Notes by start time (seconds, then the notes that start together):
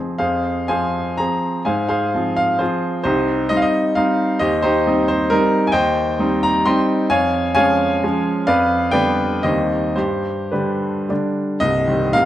Already playing: F3 C4 G#4
0.18 F2 G#4 C5 F5
0.68 F3 C4 G#4 C5 F5 G#5
1.18 F3 C4 G#4 A#5
1.65 G#2 C5 F5 G#5
1.88 G#4 C5 F5
2.14 F3 C4 F4
2.37 F5
2.59 F3 C4 F4 G#4 C5
3.04 C2 D#4 G4 C5
3.49 G3 C4 D#4 D#5
3.57 F5
3.62 D#5
3.95 G3 C4 D#4 F5
4.39 D#2 G4 C5 D#5
4.62 D#4 G4 C5
4.86 G3 C4 D#4
5.08 C5
5.30 G3 C4 D#4 A#4
5.67 G#5
5.72 D#2 C5 D#5 G5
6.19 G3 C4 D#4
6.43 A#5
6.66 G3 C4 D#4 D#5 G5 C6
7.10 F2 C#5 F5 G#5
7.55 F3 G#3 C#4 C#5 F5 G#5
8.03 F3 G#3 C#4
8.47 F2 B4 D5 F5
8.91 D3 G3 B3 B4 D5 G5
9.43 D#2 D#3 G3 C4 G4 C5 D#5
9.96 G2 G4 C5
10.52 D3 G3 D4 G4 B4
11.09 D3 G3 D4
11.60 C1 C2 D#5
11.87 D#3 G3 C4
12.13 C1 C2 F5